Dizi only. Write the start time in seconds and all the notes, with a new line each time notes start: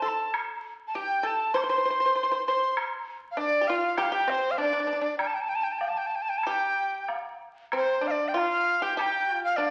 0.04 C6
0.09 A5
0.88 A5
0.95 G5
1.27 A5
1.56 D6
1.61 C6
2.47 C6
3.31 F5
3.38 D5
3.67 F5
3.97 G5
4.03 F5
4.12 G5
4.30 C5
4.51 F5
4.58 D5
5.18 G5
5.27 A5
5.34 G5
5.41 A5
5.49 G5
5.55 A5
5.64 G5
5.72 A5
5.79 G5
5.89 A5
5.98 G5
6.07 A5
6.15 G5
6.22 A5
6.29 G5
6.38 A5
6.48 G5 A5
7.77 C5
8.07 F5
8.11 D5
8.28 G5
8.39 F5
8.83 G5
8.97 A5
9.02 G5
9.44 F5
9.56 D5